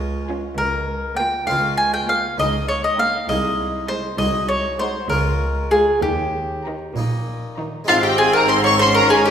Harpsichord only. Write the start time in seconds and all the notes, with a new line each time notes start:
Already playing: C#2 G#3 C#4 F4
0.58 C#2
1.48 C#2 G#3 C#4 F4
2.38 C#2 D#4 A#4
3.29 C2 G#3 D#4 G#4
4.19 C2 G#3 D#4 F#4
5.10 C#2 G#3 C#4 F4
6.03 D#2
6.96 A#2 A#3 D#4
7.84 G#3 C4 D#4
7.89 G#2
8.77 C#4 F4